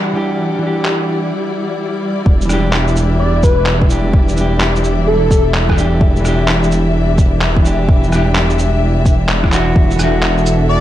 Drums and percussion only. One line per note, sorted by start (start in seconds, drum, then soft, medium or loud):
0.85 clap loud
2.26 kick loud
2.41 shaker soft
2.49 cross-stick soft
2.49 shaker medium
2.73 clap loud
2.88 shaker soft
2.96 shaker medium
3.43 kick loud
3.43 shaker medium
3.66 clap loud
3.82 kick loud
3.90 shaker medium
4.13 kick loud
4.29 shaker soft
4.37 shaker medium
4.60 clap loud
4.76 shaker soft
4.84 shaker medium
5.31 kick loud
5.31 shaker medium
5.54 clap loud
5.69 kick medium
5.69 cross-stick soft
5.78 shaker medium
6.01 kick loud
6.16 shaker soft
6.25 cross-stick soft
6.25 shaker medium
6.48 clap loud
6.63 shaker soft
6.71 shaker medium
7.18 kick loud
7.18 shaker medium
7.41 clap loud
7.57 kick loud
7.65 shaker medium
7.89 kick loud
8.04 shaker soft
8.12 cross-stick soft
8.12 shaker medium
8.35 clap loud
8.50 shaker soft
8.59 shaker medium
9.05 kick loud
9.05 shaker medium
9.29 clap loud
9.44 kick medium
9.44 cross-stick soft
9.52 clap medium
9.52 shaker medium
9.76 kick loud
9.91 shaker soft
9.99 cross-stick soft
9.99 cabasa medium
9.99 shaker medium
10.23 clap loud
10.38 shaker soft
10.46 cabasa medium
10.46 shaker medium